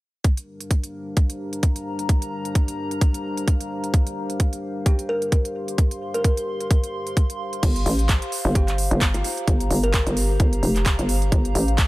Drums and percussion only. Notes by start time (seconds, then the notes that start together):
0.24 kick, closed hi-hat
0.37 closed hi-hat
0.61 closed hi-hat
0.71 kick, closed hi-hat
0.84 closed hi-hat
1.17 kick, closed hi-hat
1.30 closed hi-hat
1.53 closed hi-hat
1.63 kick, closed hi-hat
1.76 closed hi-hat
1.99 closed hi-hat
2.09 kick, closed hi-hat
2.22 closed hi-hat
2.45 closed hi-hat
2.55 kick, closed hi-hat
2.68 closed hi-hat
2.91 closed hi-hat
3.01 kick, closed hi-hat
3.14 closed hi-hat
3.37 closed hi-hat
3.48 kick, closed hi-hat
3.61 closed hi-hat
3.84 closed hi-hat
3.94 kick, closed hi-hat
4.07 closed hi-hat
4.30 closed hi-hat
4.40 kick, closed hi-hat
4.53 closed hi-hat
4.86 kick, closed hi-hat
4.99 closed hi-hat
5.22 closed hi-hat
5.32 kick, closed hi-hat
5.45 closed hi-hat
5.68 closed hi-hat
5.78 kick, closed hi-hat
5.91 closed hi-hat
6.14 closed hi-hat
6.24 kick, closed hi-hat
6.37 closed hi-hat
6.61 closed hi-hat
6.71 kick, closed hi-hat
6.84 closed hi-hat
7.07 closed hi-hat
7.17 kick, closed hi-hat
7.30 closed hi-hat
7.53 closed hi-hat
7.63 kick, closed hi-hat, crash
7.76 closed hi-hat
7.86 open hi-hat
7.99 closed hi-hat
8.09 kick, clap, closed hi-hat
8.22 closed hi-hat
8.32 open hi-hat
8.55 kick, closed hi-hat
8.68 clap, closed hi-hat
8.78 open hi-hat
8.91 closed hi-hat
9.01 kick, clap, closed hi-hat
9.14 closed hi-hat
9.24 open hi-hat
9.37 closed hi-hat
9.48 kick, closed hi-hat
9.60 closed hi-hat
9.71 open hi-hat
9.84 closed hi-hat
9.94 kick, clap, closed hi-hat
10.07 closed hi-hat
10.17 open hi-hat
10.40 kick, closed hi-hat
10.53 closed hi-hat
10.63 open hi-hat
10.76 clap, closed hi-hat
10.86 kick, clap, closed hi-hat
10.99 closed hi-hat
11.09 open hi-hat
11.22 closed hi-hat
11.32 kick, closed hi-hat
11.45 closed hi-hat
11.55 open hi-hat
11.68 closed hi-hat
11.78 kick, clap, closed hi-hat